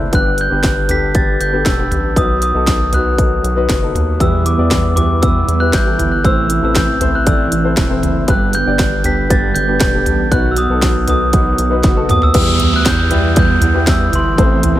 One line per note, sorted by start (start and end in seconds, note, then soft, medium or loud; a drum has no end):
0.00 0.11 F#1 loud
0.00 0.15 A2 medium
0.00 0.10 C3 medium
0.00 0.10 A3 medium
0.00 0.15 C4 medium
0.00 0.10 E4 medium
0.00 0.15 E4 medium
0.00 0.15 A4 medium
0.00 0.14 B4 medium
0.00 0.15 C5 medium
0.00 0.14 D5 medium
0.12 0.49 G1 loud
0.12 0.85 G2 soft
0.12 2.14 D3 medium
0.12 2.14 G3 medium
0.12 6.20 B3 medium
0.12 0.39 B3 medium
0.12 0.40 D4 medium
0.12 2.14 G4 medium
0.12 0.40 G4 medium
0.12 0.40 B4 medium
0.12 0.40 F#6 medium
0.12 kick medium
0.12 closed hi-hat medium
0.38 0.92 G6 medium
0.38 closed hi-hat medium
0.50 1.36 G1 medium
0.50 0.77 B3 medium
0.50 0.78 D4 medium
0.50 0.78 G4 medium
0.50 0.78 B4 medium
0.63 kick medium
0.63 snare medium
0.63 closed hi-hat soft
0.88 1.07 B3 medium
0.88 1.07 D4 medium
0.88 1.07 G4 medium
0.88 1.08 A4 medium
0.88 1.02 B6 medium
0.88 closed hi-hat medium
0.88 floor tom medium
1.14 1.41 B3 medium
1.14 1.41 D4 medium
1.14 1.42 G4 medium
1.14 1.42 B4 medium
1.14 1.41 A6 medium
1.14 kick loud
1.14 closed hi-hat medium
1.40 1.64 G1 medium
1.40 1.67 G6 medium
1.40 closed hi-hat medium
1.52 1.71 B3 medium
1.52 1.71 D4 medium
1.52 1.71 G4 medium
1.52 1.72 A4 medium
1.65 1.89 E1 medium
1.65 2.18 E6 medium
1.65 kick loud
1.65 snare loud
1.65 closed hi-hat medium
1.78 2.05 B3 medium
1.78 2.05 D4 medium
1.78 2.06 G4 medium
1.78 2.06 B4 medium
1.91 2.15 A1 medium
1.91 closed hi-hat medium
1.91 floor tom medium
2.16 2.52 B1 medium
2.16 2.89 B2 medium
2.16 4.19 D#3 medium
2.16 4.19 F#3 soft
2.16 2.43 B3 medium
2.16 2.43 D#4 medium
2.16 2.44 F#4 medium
2.16 4.19 F#4 medium
2.16 2.44 B4 medium
2.16 2.29 D#6 medium
2.16 kick medium
2.16 closed hi-hat medium
2.42 2.95 D#6 medium
2.42 closed hi-hat medium
2.54 3.40 B1 medium
2.54 2.81 B3 medium
2.54 2.82 D#4 medium
2.54 2.82 F#4 medium
2.54 2.82 A4 medium
2.67 kick medium
2.67 snare medium
2.67 closed hi-hat medium
2.92 3.11 B3 medium
2.92 3.11 D#4 medium
2.92 3.11 F#4 medium
2.92 3.12 B4 medium
2.92 3.92 F#6 medium
2.92 closed hi-hat medium
2.92 floor tom medium
3.17 3.45 B3 medium
3.17 3.45 D#4 medium
3.17 3.45 F#4 medium
3.17 3.46 A4 medium
3.17 kick medium
3.17 closed hi-hat loud
3.43 3.67 B1 loud
3.43 closed hi-hat medium
3.56 3.74 B3 medium
3.56 3.75 D#4 medium
3.56 3.75 F#4 medium
3.56 3.75 B4 medium
3.69 3.93 F#1 medium
3.69 kick loud
3.69 snare loud
3.69 closed hi-hat medium
3.82 4.09 B3 medium
3.82 4.09 D#4 medium
3.82 4.09 F#4 medium
3.82 4.10 A4 medium
3.94 4.18 D#2 medium
3.94 closed hi-hat medium
3.94 floor tom medium
4.19 4.45 E2 medium
4.19 4.56 E2 loud
4.19 4.46 B2 medium
4.19 4.93 E3 medium
4.19 4.46 E3 medium
4.19 8.24 E3 medium
4.19 4.45 G3 medium
4.19 6.23 G3 soft
4.19 4.47 B3 medium
4.19 4.44 B3 medium
4.19 4.47 E4 medium
4.19 4.43 E4 medium
4.19 4.47 G4 medium
4.19 6.23 G4 medium
4.19 4.48 B4 medium
4.19 4.45 E6 medium
4.19 kick medium
4.19 closed hi-hat medium
4.45 4.69 E3 soft
4.45 4.70 G3 soft
4.45 4.71 B3 medium
4.45 4.71 E4 medium
4.45 4.93 D6 medium
4.45 closed hi-hat medium
4.57 5.44 E2 medium
4.57 4.85 B3 medium
4.57 4.85 E4 medium
4.57 4.85 G4 medium
4.57 4.86 D5 medium
4.70 4.96 E3 medium
4.70 4.97 G3 medium
4.70 4.96 B3 medium
4.70 4.95 E4 medium
4.70 kick medium
4.70 snare loud
4.70 closed hi-hat medium
4.95 5.22 G3 soft
4.95 5.14 B3 medium
4.95 5.22 B3 soft
4.95 5.22 E4 soft
4.95 5.14 E4 medium
4.95 5.15 G4 medium
4.95 5.15 B4 medium
4.95 5.08 D6 medium
4.95 closed hi-hat medium
4.95 floor tom medium
4.99 5.21 E3 soft
5.21 5.47 E2 medium
5.21 5.48 B2 medium
5.21 5.48 E3 medium
5.21 5.48 G3 medium
5.21 5.49 B3 medium
5.21 5.47 B3 medium
5.21 5.49 E4 medium
5.21 5.46 E4 medium
5.21 5.49 G4 medium
5.21 5.49 B4 medium
5.21 5.62 E6 medium
5.21 kick loud
5.21 closed hi-hat loud
5.47 5.72 E2 medium
5.47 5.71 E3 soft
5.47 5.73 G3 soft
5.47 5.73 B3 medium
5.47 5.73 E4 medium
5.47 closed hi-hat medium
5.60 5.78 B3 medium
5.60 5.78 E4 medium
5.60 5.79 G4 medium
5.60 5.79 B4 medium
5.60 5.72 F#6 medium
5.72 5.97 A1 medium
5.72 5.98 E3 soft
5.72 5.99 G3 medium
5.72 5.98 B3 medium
5.72 5.97 E4 medium
5.72 6.13 G6 medium
5.72 kick medium
5.72 snare medium
5.72 closed hi-hat medium
5.85 6.12 B3 medium
5.85 6.13 E4 medium
5.85 6.13 G4 medium
5.85 6.13 A4 medium
5.98 6.26 G1 medium
5.98 6.23 E3 soft
5.98 6.24 G3 soft
5.98 6.25 B3 soft
5.98 6.24 E4 medium
5.98 closed hi-hat medium
5.98 floor tom medium
6.12 6.25 F#6 medium
6.23 6.60 A1 loud
6.23 6.49 A2 medium
6.23 6.97 A2 medium
6.23 8.26 C3 medium
6.23 6.50 E3 medium
6.23 8.26 A3 medium
6.23 6.50 A3 medium
6.23 6.51 C4 medium
6.23 6.49 C4 medium
6.23 8.26 E4 medium
6.23 6.51 E4 medium
6.23 6.47 E4 medium
6.23 6.51 A4 medium
6.23 6.52 C5 medium
6.23 6.63 E6 loud
6.23 kick loud
6.23 closed hi-hat medium
6.48 6.74 A3 soft
6.48 6.76 C4 medium
6.48 6.75 E4 medium
6.48 closed hi-hat medium
6.61 7.48 A1 medium
6.61 6.89 C4 medium
6.61 6.89 E4 medium
6.61 6.89 A4 medium
6.61 6.90 B4 medium
6.61 6.70 E6 medium
6.75 7.00 E3 soft
6.75 7.01 A3 soft
6.75 7.01 C4 medium
6.75 6.99 E4 medium
6.75 7.15 G6 medium
6.75 kick medium
6.75 snare loud
6.75 closed hi-hat medium
6.99 7.18 C4 medium
6.99 7.26 C4 medium
6.99 7.26 E4 soft
6.99 7.18 E4 medium
6.99 7.19 A4 medium
6.99 7.19 C5 medium
6.99 closed hi-hat medium
6.99 floor tom medium
7.03 7.25 A3 soft
7.15 7.26 F#6 medium
7.25 7.51 A2 medium
7.25 7.52 E3 medium
7.25 7.52 A3 medium
7.25 7.52 C4 medium
7.25 7.53 E4 medium
7.25 7.50 E4 medium
7.25 7.53 A4 medium
7.25 7.53 D5 medium
7.25 7.75 E6 medium
7.25 kick loud
7.25 closed hi-hat medium
7.51 7.75 A1 medium
7.51 7.76 A3 soft
7.51 7.77 C4 soft
7.51 7.77 E4 medium
7.51 closed hi-hat medium
7.63 7.82 C4 medium
7.63 7.82 E4 medium
7.63 7.82 A4 medium
7.63 7.83 C5 medium
7.76 8.01 E1 medium
7.76 8.02 E3 medium
7.76 8.03 A3 medium
7.76 8.03 C4 medium
7.76 8.01 E4 medium
7.76 kick loud
7.76 snare loud
7.76 closed hi-hat medium
7.89 8.16 C4 medium
7.89 8.17 E4 medium
7.89 8.17 A4 medium
7.89 8.17 C5 medium
8.02 8.26 F#1 medium
8.02 8.29 A3 soft
8.02 8.29 C4 soft
8.02 8.28 E4 medium
8.02 closed hi-hat medium
8.02 floor tom medium
8.27 8.64 G1 loud
8.27 9.00 G2 medium
8.27 8.53 G2 medium
8.27 10.29 D3 medium
8.27 8.54 D3 medium
8.27 10.29 G3 medium
8.27 8.54 G3 medium
8.27 8.54 B3 medium
8.27 12.31 B3 soft
8.27 8.54 B3 medium
8.27 8.54 D4 medium
8.27 8.53 D4 medium
8.27 10.29 G4 medium
8.27 8.55 G4 medium
8.27 8.52 G4 medium
8.27 8.55 B4 medium
8.27 8.53 F#6 medium
8.27 kick loud
8.27 closed hi-hat medium
8.53 8.77 G3 soft
8.53 8.78 B3 soft
8.53 8.79 D4 medium
8.53 8.79 G4 medium
8.53 9.02 G6 medium
8.53 closed hi-hat medium
8.66 9.52 G1 loud
8.66 8.93 B3 medium
8.66 8.93 D4 medium
8.66 8.93 G4 medium
8.66 8.94 D5 medium
8.78 9.04 G3 medium
8.78 9.04 B3 medium
8.78 9.04 D4 medium
8.78 9.03 G4 medium
8.78 kick medium
8.78 snare medium
8.78 closed hi-hat medium
9.03 9.29 G3 soft
9.03 9.22 B3 medium
9.03 9.30 B3 soft
9.03 9.22 D4 medium
9.03 9.30 D4 soft
9.03 9.30 G4 medium
9.03 9.22 G4 medium
9.03 9.23 B4 medium
9.03 9.31 B6 medium
9.03 closed hi-hat medium
9.03 floor tom medium
9.29 9.55 G2 medium
9.29 9.55 D3 medium
9.29 9.56 G3 medium
9.29 9.56 B3 medium
9.29 9.56 D4 medium
9.29 9.57 G4 medium
9.29 9.55 G4 medium
9.29 9.57 B4 medium
9.29 9.56 A6 medium
9.29 kick loud
9.29 closed hi-hat medium
9.55 9.79 G1 medium
9.55 9.81 B3 medium
9.55 9.82 D4 soft
9.55 9.81 G4 soft
9.55 9.66 G6 medium
9.55 closed hi-hat medium
9.59 9.80 G3 soft
9.67 9.85 B3 medium
9.67 9.86 D4 medium
9.67 9.86 G4 medium
9.67 9.86 B4 medium
9.80 10.05 E1 medium
9.80 10.07 G3 medium
9.80 10.07 B3 medium
9.80 10.07 D4 medium
9.80 10.29 G6 medium
9.80 kick loud
9.80 snare loud
9.80 closed hi-hat medium
9.85 10.06 G4 medium
9.93 10.20 B3 medium
9.93 10.20 D4 medium
9.93 10.21 G4 medium
9.93 10.21 A4 medium
10.06 10.30 A1 medium
10.06 10.32 B3 soft
10.06 10.33 D4 soft
10.06 10.32 G4 medium
10.06 closed hi-hat medium
10.06 floor tom medium
10.10 10.32 G3 soft
10.31 10.67 B1 loud
10.31 10.57 B2 medium
10.31 11.04 B2 medium
10.31 12.33 D#3 medium
10.31 12.33 F#3 medium
10.31 10.57 F#3 medium
10.31 10.58 B3 medium
10.31 10.58 B3 loud
10.31 10.59 D#4 medium
10.31 10.57 D#4 medium
10.31 12.33 F#4 medium
10.31 10.59 F#4 medium
10.31 10.55 F#4 medium
10.31 10.59 B4 medium
10.31 10.51 F#6 medium
10.31 kick medium
10.31 closed hi-hat medium
10.51 10.58 E6 medium
10.56 10.82 B3 soft
10.56 10.83 D#4 medium
10.56 10.82 F#4 medium
10.56 11.08 D#6 medium
10.56 closed hi-hat medium
10.69 11.54 B1 medium
10.69 10.96 B3 medium
10.69 10.97 D#4 medium
10.69 10.97 F#4 medium
10.69 10.97 A4 medium
10.82 11.08 F#3 medium
10.82 11.08 B3 medium
10.82 11.07 D#4 medium
10.82 11.05 F#4 medium
10.82 kick medium
10.82 snare loud
10.82 closed hi-hat medium
11.06 11.26 B3 medium
11.06 11.32 B3 soft
11.06 11.26 D#4 medium
11.06 11.33 D#4 soft
11.06 11.33 F#4 medium
11.06 11.26 F#4 medium
11.06 11.27 A4 medium
11.06 12.06 D#6 medium
11.06 closed hi-hat medium
11.06 floor tom medium
11.32 11.58 B2 medium
11.32 11.59 F#3 medium
11.32 11.60 B3 medium
11.32 11.59 B3 medium
11.32 11.60 D#4 medium
11.32 11.59 D#4 medium
11.32 11.60 F#4 medium
11.32 11.57 F#4 medium
11.32 11.60 B4 medium
11.32 kick loud
11.32 closed hi-hat loud
11.58 11.82 B1 loud
11.58 11.84 B3 soft
11.58 11.85 D#4 soft
11.58 11.84 F#4 soft
11.58 closed hi-hat medium
11.70 11.89 B3 medium
11.70 11.89 D#4 medium
11.70 11.90 F#4 medium
11.70 11.90 B4 medium
11.83 12.08 F#1 medium
11.83 12.10 F#3 medium
11.83 12.10 B3 medium
11.83 12.10 D#4 medium
11.83 kick loud
11.83 snare soft
11.83 closed hi-hat medium
11.87 12.08 F#4 medium
11.96 12.23 B3 medium
11.96 12.23 D#4 medium
11.96 12.23 F#4 medium
11.96 12.24 A4 medium
12.09 12.33 D#2 medium
12.09 12.36 B3 soft
12.09 12.36 D#4 soft
12.09 12.35 F#4 medium
12.09 12.23 D#6 medium
12.09 closed hi-hat medium
12.09 mid tom medium
12.22 12.70 E6 medium
12.22 floor tom medium
12.33 12.70 E2 loud
12.33 12.60 E2 medium
12.33 12.61 B2 medium
12.33 13.07 E3 medium
12.33 12.61 E3 medium
12.33 14.36 G3 medium
12.33 12.61 G3 medium
12.33 12.88 B3 medium
12.33 14.35 B3 medium
12.33 12.60 B3 loud
12.33 12.88 E4 medium
12.33 14.35 G4 medium
12.33 12.88 G4 medium
12.33 12.89 B4 medium
12.33 kick loud
12.33 closed hi-hat medium
12.33 crash medium
12.33 downlifter medium
12.37 12.58 E4 loud
12.59 12.84 E3 soft
12.59 12.85 G3 medium
12.59 12.86 B3 medium
12.59 12.85 E4 medium
12.59 closed hi-hat medium
12.59 floor tom medium
12.72 12.84 D2 medium
12.72 12.86 F#6 medium
12.85 13.58 E2 loud
12.85 13.11 E3 medium
12.85 13.11 G3 soft
12.85 13.10 B3 medium
12.85 13.09 E4 medium
12.85 13.34 G6 loud
12.85 kick medium
12.85 snare loud
12.85 closed hi-hat medium
13.10 13.35 E3 soft
13.10 13.35 G3 medium
13.10 13.55 B3 medium
13.10 13.36 B3 medium
13.10 13.36 E4 medium
13.10 13.55 E4 medium
13.10 13.56 G4 medium
13.10 13.56 D5 medium
13.10 closed hi-hat medium
13.10 floor tom medium
13.35 13.61 E2 loud
13.35 13.62 B2 medium
13.35 13.62 E3 loud
13.35 13.62 G3 loud
13.35 13.61 B3 loud
13.35 13.59 E4 loud
13.35 kick loud
13.35 closed hi-hat loud
13.39 13.90 G6 medium
13.61 14.09 E2 medium
13.61 13.85 E3 soft
13.61 13.87 G3 medium
13.61 13.87 B3 medium
13.61 13.87 E4 medium
13.61 closed hi-hat medium
13.61 floor tom medium
13.73 14.19 B3 medium
13.73 14.19 E4 medium
13.73 14.19 G4 medium
13.73 14.20 B4 medium
13.87 14.12 E3 medium
13.87 14.13 G3 medium
13.87 14.12 B3 medium
13.87 14.10 E4 medium
13.87 14.12 E6 medium
13.87 kick loud
13.87 snare loud
13.87 closed hi-hat medium
14.11 14.36 G1 loud
14.11 14.36 E3 soft
14.11 14.38 G3 soft
14.11 14.38 B3 soft
14.11 14.38 E4 medium
14.11 closed hi-hat medium
14.11 floor tom medium
14.15 14.80 C6 medium
14.37 14.74 A1 loud
14.37 14.63 A2 medium
14.37 14.80 A2 medium
14.37 14.80 C3 medium
14.37 14.63 E3 medium
14.37 14.80 E3 medium
14.37 14.80 A3 medium
14.37 14.64 A3 medium
14.37 14.64 C4 medium
14.37 14.63 C4 loud
14.37 14.65 E4 medium
14.37 14.80 E4 medium
14.37 14.61 E4 loud
14.37 14.65 A4 medium
14.37 14.66 C5 medium
14.37 kick loud
14.37 closed hi-hat medium
14.62 14.80 A3 medium
14.62 14.80 C4 medium
14.62 14.80 E4 medium
14.62 closed hi-hat medium
14.62 floor tom medium
14.75 14.80 G1 medium
14.75 14.80 C4 loud
14.75 14.80 E4 medium
14.75 14.80 A4 medium